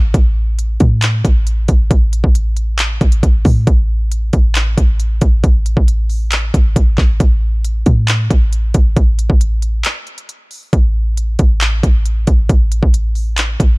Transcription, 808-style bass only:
Already playing: A1
0.14 A1
0.80 A2
1.25 A1
1.69 A1
1.91 A1
2.24 A1
3.01 A1
3.23 A1
3.45 A2
3.67 A1
4.33 A1
4.78 A1
5.22 A1
5.44 A1
5.77 A1
6.54 A1
6.76 A1
6.98 A1
7.20 A1
7.86 A2
8.30 A1
8.74 A1
8.97 A1
9.30 A1
10.73 A1
11.39 A1
11.83 A1
12.27 A1
12.49 A1
12.83 A1
13.60 A1

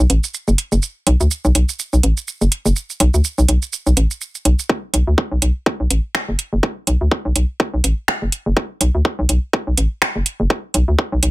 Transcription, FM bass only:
0.10 A1
0.48 F#1
0.72 F#1
1.07 B1
1.20 D2
1.45 B1
1.55 B1
1.93 B1
2.04 A1
2.41 F#1
2.65 F#1
3.00 B1
3.14 D2
3.38 B1
3.49 B1
3.87 B1
3.97 A1
4.45 B1
4.94 B1
5.07 D2
5.32 B1
5.42 B1
5.80 B1
5.91 A1
6.29 F#1
6.53 F#1
6.87 B1
7.01 D2
7.25 B1
7.36 B1
7.74 B1
7.84 A1
8.22 F#1
8.46 F#1
8.81 B1
8.95 D2
9.19 B1
9.29 B1
9.67 B1
9.78 A1
10.16 F#1
10.40 F#1
10.74 B1
10.88 D2
11.12 B1
11.23 B1

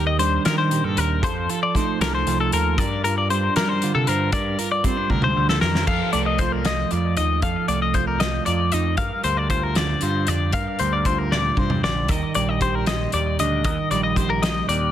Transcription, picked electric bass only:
Already playing: D#2
0.46 D#3
0.84 G2
0.97 D#2
1.23 F2
2.00 C2
2.27 C2
2.53 D#2
2.78 G2
3.56 G3
3.95 C3
4.08 G2
4.33 G2
5.10 D2
5.37 D2
5.63 F2
5.88 F2
6.14 C2
6.92 F2
7.18 D#2
7.43 F2
7.69 C2
8.47 F2
8.73 F2
8.98 G2
9.25 D2
10.03 G2
10.28 F2
10.53 G2
10.80 D2
11.57 G2
11.84 A#1
12.10 D#2
12.36 A#1
13.14 D#2
13.39 D2
13.65 D#2
13.91 A#1
14.69 D#2

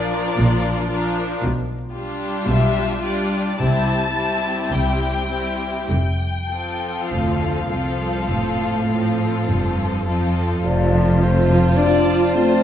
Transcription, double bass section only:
Already playing: A#1
0.40 A#1
1.45 B1
2.48 B1
3.61 C2
4.72 C2
5.90 F1
7.11 F1
8.31 F1
9.49 F1
10.64 F1

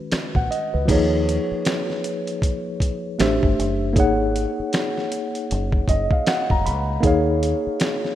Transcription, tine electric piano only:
Already playing: D#3 G#3 C#4 F#4
0.36 F#5
0.51 D#5
0.74 B4
0.85 F3 A#3 D#4
0.90 G#4 C#5
3.19 A3 D4 G4 C5 E5
3.93 A#3 D#4 G#4
3.99 C#5 F#5
5.89 D#5
6.12 F5
6.28 F#5
6.51 A#5
6.66 B5
7.01 A#3 D#4 G#4
7.06 C#5 F5

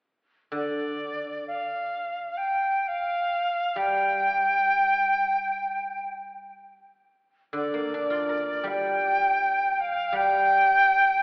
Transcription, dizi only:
0.55 D5
1.47 F5
2.37 G5
2.87 F5
3.77 G5
7.55 D5
8.67 G5
9.72 G5
9.79 F5
10.15 G5

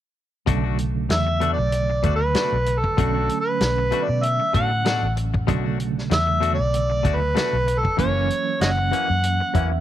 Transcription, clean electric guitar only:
0.46 B2 A3 D4 F#4
0.64 A3 D4 F#4
0.78 muted clean electric guitar stroke
1.09 muted clean electric guitar stroke
1.27 muted clean electric guitar stroke
1.40 B2 A3 D4 F#4
1.58 muted clean electric guitar stroke
1.90 muted clean electric guitar stroke
2.03 B2 A3 D4 F#4
2.21 muted clean electric guitar stroke
2.35 B2 A3 D4 F#4
2.67 muted clean electric guitar stroke
2.84 muted clean electric guitar stroke
2.97 B2 A3 D4 F#4
3.14 A3 D4 F#4
3.29 muted clean electric guitar stroke
3.60 muted clean electric guitar stroke
3.78 muted clean electric guitar stroke
3.91 B2 A3 D4 F#4
4.09 muted clean electric guitar stroke
4.40 muted clean electric guitar stroke
4.53 B2 A3 D4 F#4
4.71 muted clean electric guitar stroke
4.85 B2 A3 D4 F#4
5.17 muted clean electric guitar stroke
5.34 muted clean electric guitar stroke
5.47 B2 A3 D4 F#4
5.64 A3 D4 F#4
5.79 muted clean electric guitar stroke
6.10 muted clean electric guitar stroke
6.27 muted clean electric guitar stroke
6.41 B2 A3 D4 F#4
6.58 muted clean electric guitar stroke
6.90 muted clean electric guitar stroke
7.03 B2 A3 D4 F#4
7.21 muted clean electric guitar stroke
7.35 B2 A3 D4 F#4
7.66 muted clean electric guitar stroke
7.84 muted clean electric guitar stroke
7.97 F#2 E3 A#3 C#4
8.15 E3 A#3 C#4
8.29 muted clean electric guitar stroke
8.60 muted clean electric guitar stroke
8.78 muted clean electric guitar stroke
8.92 F#2 E3 A#3 C#4
9.09 muted clean electric guitar stroke
9.40 muted clean electric guitar stroke
9.54 F#2 E3 A#3 C#4
9.72 muted clean electric guitar stroke

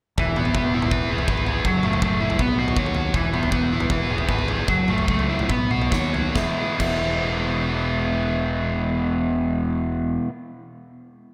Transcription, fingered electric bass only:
0.18 E1
0.55 E1
0.91 E1
1.08 E1
1.28 G#1
1.64 F#1
1.83 F#1
2.02 F#1
2.39 B1
2.56 B1
2.77 D#2
3.14 E1
3.51 E1
3.90 E1
4.09 E1
4.29 G#1
4.68 F#1
4.88 F#1
5.08 C#2
5.49 B1
5.71 B1
5.92 D#2
6.35 E1
6.79 E1

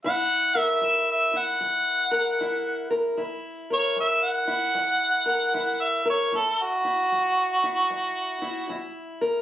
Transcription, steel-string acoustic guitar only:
0.04 F#2 E4
0.55 A#4
0.81 F#2
1.33 E4
1.61 F#2
2.11 A#4
2.40 F#2 E4
2.90 A#4
3.17 F#2 E4
3.70 A#4
3.96 F#2
4.47 E4
4.75 F#2
5.26 A#4
5.54 F#2 E4
6.05 A#4
6.32 F#2 E4
6.85 E4
7.12 F#2
7.63 E4
7.90 F#2
8.42 E4
8.69 F#2 E4
9.21 A#4

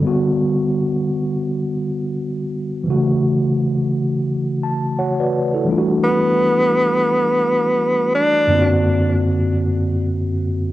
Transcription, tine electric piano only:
0.00 D3 G3
0.05 B3 F#4
2.84 E3 G3
2.88 C#3 F#4
2.92 A3
4.63 A5
4.99 F#4 C#5 F#5
5.20 F#4 B4 D5
5.54 E4 A4
5.65 E3 G3 A3
5.69 D4 F4
5.78 F#4
8.47 F#2 D3 A#3
8.52 C4 F4
8.60 F#4

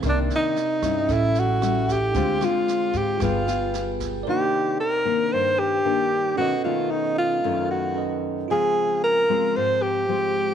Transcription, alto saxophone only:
0.09 D4
0.36 D#4
1.13 E4
1.39 F#4
1.92 G4
2.45 F4
2.97 G4
3.24 F4
4.30 G4
4.80 A#4
5.33 C5
5.59 G4
6.37 F#4
6.64 F4
6.91 D#4
7.18 F4
7.71 F#4
8.51 G#4
9.04 A#4
9.56 C5
9.82 G4

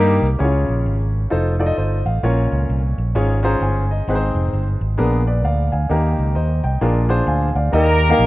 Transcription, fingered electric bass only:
Already playing: G2
0.22 C2
0.40 C#2
0.69 A#1
0.86 G#1
1.32 F1
1.78 G1
2.06 A1
2.23 A#1
2.52 C#2
2.69 C2
2.98 A#1
3.15 G#1
3.61 G1
4.08 G#1
4.35 F1
4.53 G1
4.81 G#1
4.99 A#1
5.45 D2
5.73 D2
5.90 D#2
6.19 C#2
6.36 D#2
6.64 C2
6.81 A#1
7.27 D2
7.55 D2
7.73 D#2
8.19 A#1

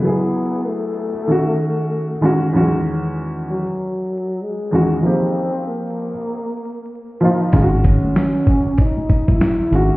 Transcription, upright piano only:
0.02 F#3 B3 E4
0.07 G#4
1.27 D#3 C#4 G#4
1.31 F#4
2.21 D#3 G#3 C#4
2.25 F#4
2.53 E2 D#3 F#3 C#4
2.57 F#4
2.61 G#3
4.71 E2 D#3 G#3 C#4 F#4
5.02 F3 A#3 D#4
5.06 G4
7.21 F3 A#3 D#4
7.25 F4
7.52 D#3 G#3 C#4 F4
7.63 F#4
9.71 D#3 G#3 C#4 F#4

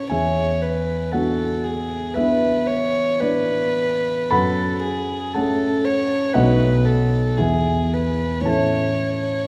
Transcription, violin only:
0.10 C#5
0.61 B4
1.12 A4
1.63 G#4
2.13 B4
2.67 C#5
3.20 B4
4.30 A4
4.82 G#4
5.33 A4
5.84 C#5
6.33 B4
6.85 A4
7.37 G#4
7.93 B4
8.48 C#5

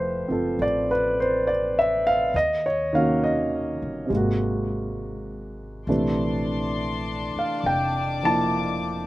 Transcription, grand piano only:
Already playing: F3 A3 E4 G4 B4 C5
0.28 C4 F4 A4
0.62 D5
0.91 B4
1.20 C5
1.47 D5
1.79 E5
2.07 F5
2.36 D#5
2.66 C#5
2.93 D#3 A#3 C#4 F5
2.97 F#4
3.24 D#5
4.06 C3
4.10 G#3 A#3
4.16 F#4
5.89 C3 E3 A3 D4
7.39 F5
7.66 G5
8.23 F3 A#3 E4 A5

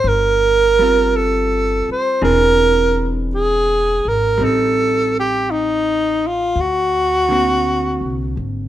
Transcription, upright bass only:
0.04 G1
1.89 muted upright bass stroke
2.22 E1
4.05 G#1
4.39 A1
6.55 D2
8.01 C2
8.37 G#1

